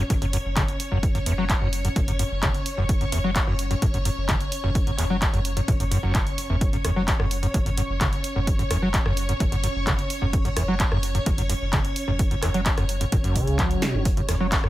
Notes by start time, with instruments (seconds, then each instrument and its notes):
Already playing: string machine C#5
0.10 sub bass F#1, acid bass A2, kick, closed hi-hat
0.22 acid bass F#2, closed hi-hat
0.33 acid bass F#2, open hi-hat
0.45 sub bass F#1
0.56 acid bass C#3, kick, clap, closed hi-hat
0.68 closed hi-hat
0.80 open hi-hat
0.92 sub bass F#1, acid bass F#2
1.03 kick, closed hi-hat
1.15 acid bass F#2, closed hi-hat
1.26 sub bass F#1, acid bass E2, open hi-hat
1.38 acid bass F#3
1.50 kick, clap, closed hi-hat
1.61 sub bass F#1, acid bass F#2
1.73 open hi-hat
1.85 acid bass F#2, closed hi-hat
1.96 sub bass F#1, acid bass A2, kick, closed hi-hat
2.08 acid bass F#2, closed hi-hat
2.19 acid bass F#2, open hi-hat
2.31 sub bass F#1
2.43 acid bass C#3, kick, clap, closed hi-hat
2.55 closed hi-hat
2.66 open hi-hat
2.78 sub bass F#1, acid bass F#2
2.89 kick, closed hi-hat
3.01 acid bass F#2, closed hi-hat
3.12 sub bass F#1, acid bass E2, open hi-hat
3.24 acid bass F#3
3.36 kick, clap, closed hi-hat
3.47 sub bass F#1, acid bass F#2
3.59 open hi-hat
3.71 acid bass F#2, closed hi-hat
3.82 sub bass F#1, acid bass A2, kick, closed hi-hat
3.94 acid bass F#2, closed hi-hat
4.05 acid bass F#2, open hi-hat
4.17 sub bass F#1
4.29 acid bass C#3, kick, clap, closed hi-hat
4.41 closed hi-hat
4.52 open hi-hat
4.64 sub bass F#1, acid bass F#2
4.75 kick, closed hi-hat
4.87 acid bass F#2, closed hi-hat
4.98 sub bass F#1, acid bass E2, clap, open hi-hat
5.10 acid bass F#3
5.22 kick, clap, closed hi-hat
5.33 sub bass F#1, acid bass F#2, closed hi-hat
5.45 open hi-hat
5.57 acid bass F#2, closed hi-hat
5.68 sub bass F#1, acid bass A2, kick, closed hi-hat
5.80 acid bass F#2, closed hi-hat
5.91 acid bass F#2, open hi-hat
6.03 sub bass F#1, acid bass F#2
6.15 acid bass A2, kick, clap, closed hi-hat
6.27 closed hi-hat
6.38 open hi-hat
6.50 sub bass F#1, acid bass E2
6.61 string machine C#5, kick, closed hi-hat
6.73 acid bass F#2, closed hi-hat
6.84 sub bass F#1, acid bass E2, cross-stick, open hi-hat
6.96 acid bass F#3
7.08 kick, clap, closed hi-hat
7.19 sub bass F#1, acid bass F#2, cross-stick
7.31 open hi-hat
7.43 acid bass F#2, closed hi-hat
7.54 sub bass F#1, acid bass A2, kick, closed hi-hat
7.66 acid bass F#2, closed hi-hat
7.77 acid bass F#2, open hi-hat
7.89 sub bass F#1
8.01 acid bass C#3, kick, clap, closed hi-hat
8.13 closed hi-hat
8.24 open hi-hat
8.36 sub bass F#1, acid bass F#2
8.47 kick, closed hi-hat
8.59 acid bass F#2, closed hi-hat
8.70 sub bass F#1, acid bass E2, cross-stick, open hi-hat
8.82 acid bass F#3
8.94 kick, clap, closed hi-hat
9.06 sub bass F#1, acid bass F#2, cross-stick
9.17 open hi-hat
9.29 acid bass F#2, closed hi-hat
9.40 sub bass F#1, acid bass A2, kick, closed hi-hat
9.52 acid bass F#2, closed hi-hat
9.63 acid bass F#2, open hi-hat
9.75 sub bass F#1
9.87 acid bass C#3, kick, clap, closed hi-hat
9.99 closed hi-hat
10.10 open hi-hat
10.22 sub bass F#1, acid bass F#2
10.33 kick, closed hi-hat
10.45 acid bass F#2, closed hi-hat
10.56 sub bass F#1, acid bass E2, cross-stick, open hi-hat
10.68 acid bass F#3
10.80 kick, clap, closed hi-hat
10.92 sub bass F#1, acid bass F#2, cross-stick
11.03 open hi-hat
11.15 acid bass F#2, closed hi-hat
11.26 sub bass F#1, acid bass A2, kick, closed hi-hat
11.38 acid bass F#2, closed hi-hat
11.49 acid bass F#2, open hi-hat
11.61 sub bass F#1
11.73 acid bass C#3, kick, clap, closed hi-hat
11.85 closed hi-hat
11.96 open hi-hat
12.08 sub bass F#1, acid bass F#2
12.19 kick, closed hi-hat
12.31 acid bass F#2, closed hi-hat
12.42 sub bass F#1, acid bass E2, cross-stick, clap, open hi-hat
12.54 acid bass F#3, closed hi-hat
12.66 kick, clap, closed hi-hat
12.78 sub bass F#1, acid bass F#2, cross-stick, closed hi-hat
12.89 open hi-hat
13.01 acid bass F#2, closed hi-hat
13.12 sub bass F#1, acid bass A2, kick, closed hi-hat
13.24 acid bass F#2, closed hi-hat
13.36 acid bass C#3, kick, open hi-hat
13.47 sub bass C#2, closed hi-hat
13.59 acid bass F#3, kick, clap, closed hi-hat
13.71 closed hi-hat
13.82 acid bass B2, snare, open hi-hat
13.94 sub bass F#1, acid bass F#2
14.05 string machine C#5, kick, closed hi-hat
14.17 acid bass F#2, closed hi-hat
14.29 sub bass F#1, acid bass E2, cross-stick, snare, closed hi-hat, open hi-hat
14.40 acid bass F#3
14.52 kick, snare, clap, closed hi-hat
14.64 sub bass F#1, acid bass F#2, cross-stick